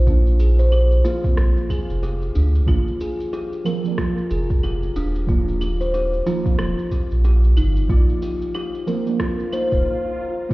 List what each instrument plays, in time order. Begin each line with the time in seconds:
Already playing: sub bass A#1
0.05 synth stab F3 A#3, kalimba F4, kick, shaker
0.09 synth stab D4
0.27 shaker
0.40 kalimba G#4, shaker
0.59 kalimba C5, shaker
0.72 kalimba G4, claves, shaker
0.92 shaker
1.04 synth stab F3 A#3 F4, kalimba F4, shaker
1.22 synth stab F3 A#3 C4, kick, shaker
1.37 sub bass A#1, cross-stick, shaker
1.57 shaker
1.70 kalimba G#4, kick, claves, shaker
1.90 sub bass F1, shaker
2.03 kalimba G4, shaker
2.22 shaker
2.35 sub bass D2, kalimba D4, shaker
2.55 shaker
2.66 sub bass G#1, synth stab F3 A#3, kalimba F4, kick, claves, shaker
2.70 synth stab D4
2.88 shaker
3.01 kalimba G#4, shaker
3.20 shaker
3.33 kalimba G4, shaker
3.53 shaker
3.64 synth stab F3 A#3 C4, kalimba A#4, claves, shaker
3.83 synth stab F3 A#3 D4, shaker
3.98 kalimba F4, kick, cross-stick, shaker
4.18 shaker
4.31 sub bass F1, kalimba G#4, shaker
4.50 kick, shaker
4.63 kalimba G4, claves, shaker
4.83 shaker
4.96 sub bass D#1, kalimba D4, shaker
5.15 shaker
5.26 synth stab F3 A#3, kalimba F4, kick, shaker
5.30 synth stab D4
5.48 shaker
5.61 kalimba G4, claves, shaker
5.81 kalimba C5, shaker
5.94 kalimba G4, shaker
6.13 shaker
6.26 synth stab F3 A#3 D#4, kalimba F4, shaker
6.44 synth stab F3 A#3, kick, shaker
6.48 synth stab C4
6.59 sub bass D#1, cross-stick, claves, shaker
6.79 shaker
6.91 kalimba G4, kick, shaker
7.11 sub bass A#1, shaker
7.24 kalimba G4, shaker
7.44 shaker
7.57 sub bass G1, kalimba D#4, claves, shaker
7.76 shaker
7.87 sub bass A#1, synth stab F3 A#3, kalimba F4, kick, shaker
7.91 synth stab D5
8.09 shaker
8.22 kalimba G4, shaker
8.42 shaker
8.55 kalimba G4, claves, shaker
8.75 shaker
8.86 synth stab F3 A#3 C4, kalimba A#4, shaker
9.06 synth stab F3 A#3 D4, shaker
9.20 kalimba F4, kick, cross-stick, swell, shaker
9.40 shaker
9.51 synth stab F3 A#3 D#4, kalimba C5, claves, shaker
9.72 sub bass D#1, kick, shaker
10.49 synth stab A#3, kick